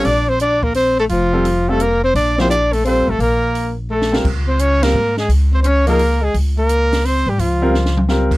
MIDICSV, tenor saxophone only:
0, 0, Header, 1, 2, 480
1, 0, Start_track
1, 0, Tempo, 349243
1, 78, Time_signature, 3, 2, 24, 8
1, 11508, End_track
2, 0, Start_track
2, 0, Title_t, "Tenor saxophone"
2, 0, Program_c, 0, 66
2, 95, Note_on_c, 0, 62, 81
2, 397, Note_on_c, 0, 60, 65
2, 418, Note_off_c, 0, 62, 0
2, 558, Note_off_c, 0, 60, 0
2, 566, Note_on_c, 0, 62, 81
2, 865, Note_on_c, 0, 58, 68
2, 886, Note_off_c, 0, 62, 0
2, 1023, Note_off_c, 0, 58, 0
2, 1031, Note_on_c, 0, 60, 72
2, 1325, Note_off_c, 0, 60, 0
2, 1374, Note_on_c, 0, 57, 71
2, 1445, Note_off_c, 0, 57, 0
2, 1537, Note_on_c, 0, 53, 70
2, 2334, Note_on_c, 0, 57, 66
2, 2354, Note_off_c, 0, 53, 0
2, 2485, Note_on_c, 0, 58, 73
2, 2506, Note_off_c, 0, 57, 0
2, 2789, Note_off_c, 0, 58, 0
2, 2798, Note_on_c, 0, 60, 72
2, 2951, Note_off_c, 0, 60, 0
2, 2957, Note_on_c, 0, 62, 82
2, 3249, Note_off_c, 0, 62, 0
2, 3268, Note_on_c, 0, 60, 71
2, 3413, Note_off_c, 0, 60, 0
2, 3421, Note_on_c, 0, 62, 76
2, 3760, Note_on_c, 0, 57, 69
2, 3781, Note_off_c, 0, 62, 0
2, 3902, Note_off_c, 0, 57, 0
2, 3910, Note_on_c, 0, 60, 75
2, 4230, Note_on_c, 0, 57, 65
2, 4251, Note_off_c, 0, 60, 0
2, 4384, Note_off_c, 0, 57, 0
2, 4392, Note_on_c, 0, 58, 72
2, 5135, Note_off_c, 0, 58, 0
2, 5363, Note_on_c, 0, 57, 67
2, 5731, Note_off_c, 0, 57, 0
2, 6148, Note_on_c, 0, 60, 64
2, 6314, Note_on_c, 0, 61, 73
2, 6335, Note_off_c, 0, 60, 0
2, 6631, Note_on_c, 0, 58, 73
2, 6652, Note_off_c, 0, 61, 0
2, 7101, Note_off_c, 0, 58, 0
2, 7109, Note_on_c, 0, 56, 63
2, 7268, Note_off_c, 0, 56, 0
2, 7595, Note_on_c, 0, 60, 63
2, 7712, Note_off_c, 0, 60, 0
2, 7741, Note_on_c, 0, 60, 54
2, 7769, Note_on_c, 0, 61, 71
2, 7789, Note_off_c, 0, 60, 0
2, 8058, Note_off_c, 0, 61, 0
2, 8066, Note_on_c, 0, 58, 75
2, 8540, Note_on_c, 0, 56, 66
2, 8560, Note_off_c, 0, 58, 0
2, 8715, Note_off_c, 0, 56, 0
2, 9036, Note_on_c, 0, 58, 66
2, 9691, Note_on_c, 0, 60, 62
2, 9711, Note_off_c, 0, 58, 0
2, 10004, Note_on_c, 0, 55, 59
2, 10025, Note_off_c, 0, 60, 0
2, 10170, Note_on_c, 0, 53, 55
2, 10191, Note_off_c, 0, 55, 0
2, 11125, Note_off_c, 0, 53, 0
2, 11508, End_track
0, 0, End_of_file